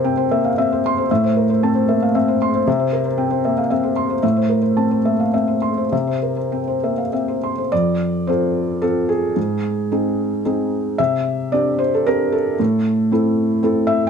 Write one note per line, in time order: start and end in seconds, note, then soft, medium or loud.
0.00 1.06 C3 medium
0.00 1.12 A#4 soft
0.00 0.17 C5 medium
0.00 0.31 E5 medium
0.04 0.47 C4 medium
0.04 0.25 G5 medium
0.17 0.38 C5 medium
0.31 0.57 A#3 soft
0.31 0.52 E5 medium
0.45 0.57 F5 medium
0.58 1.00 C4 medium
0.58 0.79 E5 medium
0.72 0.92 C5 medium
0.86 1.06 C6 medium
0.98 1.10 C5 medium
1.11 2.63 A2 medium
1.11 1.31 E5 medium
1.24 1.44 C5 medium
1.36 1.49 A#4 medium
1.50 1.70 C5 medium
1.63 2.05 C4 medium
1.63 1.84 A5 medium
1.75 1.96 C5 medium
1.89 2.15 A#3 soft
1.89 2.10 E5 medium
2.02 2.15 F5 medium
2.15 2.56 C4 medium
2.15 2.36 E5 medium
2.28 2.49 C5 medium
2.42 2.62 C6 medium
2.55 2.67 C5 medium
2.67 4.19 C3 medium
2.67 2.88 E5 medium
2.80 3.00 C5 medium
2.93 3.06 A#4 medium
3.05 3.26 C5 medium
3.18 3.59 C4 medium
3.18 3.39 G5 medium
3.31 3.52 C5 medium
3.45 3.71 A#3 soft
3.45 3.65 E5 soft
3.58 3.70 F5 soft
3.70 4.12 C4 medium
3.70 3.91 E5 medium
3.83 4.04 C5 soft
3.96 4.17 C6 medium
4.10 4.23 C5 soft
4.23 5.88 A2 medium
4.23 4.44 E5 medium
4.37 4.58 C5 soft
4.49 4.63 A#4 soft
4.62 4.84 C5 soft
4.77 5.22 C4 soft
4.77 4.99 A5 soft
4.91 5.13 C5 soft
5.05 5.33 A#3 soft
5.05 5.28 E5 soft
5.20 5.33 F5 soft
5.33 5.80 C4 soft
5.33 5.56 E5 medium
5.48 5.71 C5 soft
5.62 5.86 C6 soft
5.77 5.92 C5 soft
5.92 7.67 C3 medium
5.92 6.16 E5 soft
6.07 6.31 C5 soft
6.22 6.37 A#4 soft
6.36 6.60 C5 soft
6.52 6.99 C4 soft
6.52 6.76 G5 soft
6.68 6.91 C5 soft
6.83 7.12 A#3 soft
6.83 7.06 E5 soft
6.98 7.12 F5 soft
7.13 7.60 C4 soft
7.13 7.36 E5 soft
7.28 7.52 C5 soft
7.43 7.66 C6 soft
7.58 7.72 C5 soft
7.72 8.27 F2 medium
7.72 8.28 D5 medium
8.27 8.78 C4 soft
8.27 8.78 F4 soft
8.27 8.79 A4 soft
8.27 8.82 C5 medium
8.82 9.33 C4 soft
8.82 9.33 F4 soft
8.82 9.09 A4 medium
9.09 9.91 G#4 medium
9.36 9.89 G#2 medium
9.92 10.41 C4 soft
9.92 10.41 D#4 soft
9.92 10.41 G#4 soft
10.45 10.95 C4 soft
10.45 10.95 D#4 soft
10.45 10.95 G#4 soft
10.98 11.52 C3 medium
10.98 11.53 E5 medium
11.52 12.03 C4 soft
11.52 12.03 D4 soft
11.52 12.03 G4 soft
11.52 11.79 D5 medium
11.79 11.93 C5 medium
11.94 12.07 A4 medium
12.06 12.55 C4 soft
12.06 12.55 D4 soft
12.06 12.56 G4 medium
12.06 12.33 A#4 medium
12.32 13.11 A4 medium
12.60 13.10 A2 medium
13.12 13.59 C4 soft
13.12 13.60 E4 soft
13.12 13.60 A4 medium
13.63 14.10 C4 medium
13.63 14.10 E4 medium
13.63 14.10 A4 medium
13.87 14.07 E5 medium